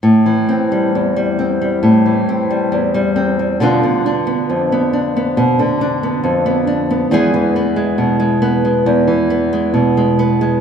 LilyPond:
\new Staff \with { instrumentName = "Nylon-string guitar" } { \clef bass \time 4/4 \key a \minor \tempo 4 = 68 << { r8 c'16 g8 g16 c'16 g8. c'16 g8 g16 c'16 g16 | <d b d' f'>8 d'16 b8 b16 d'16 b8. d'16 b8 b16 d'16 b16 | <e gis b gis'>8 b16 gis8 gis16 b16 gis8. b16 gis8 gis16 b16 gis16 | } \\ { a,16 e8. e,4 a,16 e8. e,4 | b,16 d8. f,4 b,16 d8. f,4 | e,16 e8. b,4 e,16 e8. b,4 | } >> }